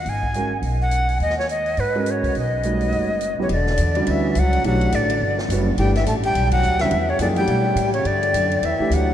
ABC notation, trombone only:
X:1
M:4/4
L:1/8
Q:"Swing" 1/4=210
K:Blyd
V:1 name="Trombone" clef=bass
z8 | z8 | z6 z C, | [K:Edor] D,4 E,2 F,2 |
F,2 D,3 z3 | G, E, A, G,2 F,2 E,- | E, C, D, G,4 C, | D,4 E,2 F,2 |]